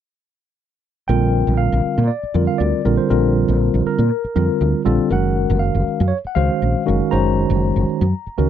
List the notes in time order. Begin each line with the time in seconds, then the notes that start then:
1.08 A#1 D3 G3 C4 F4 A#4 G5
1.47 A#1
1.57 F5
1.72 A#1
1.85 muted fretless electric bass stroke
1.98 A#2
2.08 D5
2.23 muted fretless electric bass stroke
2.34 F2 D3 G3 C4 F4 A#4
2.47 F5
2.58 D2 D5
2.85 A#1 D3 G3 C4 F4 A#4
2.97 C5
3.09 A#1 D3 G3 C4 F4 A#4
3.48 A#1
3.74 A#1
3.86 A#4, muted fretless electric bass stroke
3.98 A#2
4.24 muted fretless electric bass stroke
4.35 F2 D3 G3 C4 F4 A#4
4.61 D2
4.85 A#1 D3 G3 C4 F4 A4
5.10 F#1 D#3 G#3 C#4 F#4 A#4 F#5
5.50 F#1
5.59 F5
5.75 F#1
5.87 muted fretless electric bass stroke
6.00 F#2
6.08 C#5
6.24 F#5, muted fretless electric bass stroke
6.35 C#2 D#3 G#3 C#4 F#4 C5 F5
6.62 A#1
6.86 F#1 D#3 G#3 C#4 F#4 A#4
7.11 F#1 D#3 G#3 C#4 F#4 C5 A#5
7.50 F#1
7.76 F#1
7.89 muted fretless electric bass stroke
8.01 F#2
8.26 muted fretless electric bass stroke
8.38 C#2 D#3 G#3 C#4 F#4 A#4